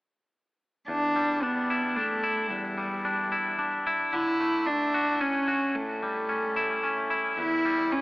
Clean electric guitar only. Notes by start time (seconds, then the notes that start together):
0.88 E2
1.16 G3
1.43 D4
1.70 E4
1.96 D4
2.24 E4
2.51 E2
2.78 G3
3.05 D4
3.32 E4
3.59 D4
3.87 E4
4.13 D3
4.40 A3
4.94 F#4
5.21 C#4
5.48 F#4
5.75 A2
6.03 G3
6.29 C#4
6.56 E4
6.83 C#4
7.10 E4
7.38 E2
7.65 G3